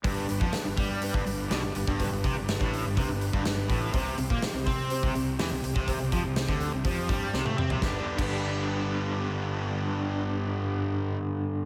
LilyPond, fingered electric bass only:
\new Staff \with { instrumentName = "Fingered electric bass" } { \clef bass \time 4/4 \key g \major \tempo 4 = 123 g,,8 g,,16 f,16 r16 g,,16 g,8. g,,16 g,,8 b,,16 g,,16 g,,16 g,,16~ | g,,16 g,,16 c,16 g,,8 a,,8 g,,16 c,16 g,,8 g,,16 g,,8 a,,8 | c,8 c,16 bes,16 r16 c,16 c8. c,16 c,8 e,16 c,16 c,16 c,16~ | c,16 c,16 f,16 c,8 d,8 c,16 f,8 g,8 c,16 a,16 c16 c,16 |
g,,16 r8 g,,2.~ g,,16~ | g,,1 | }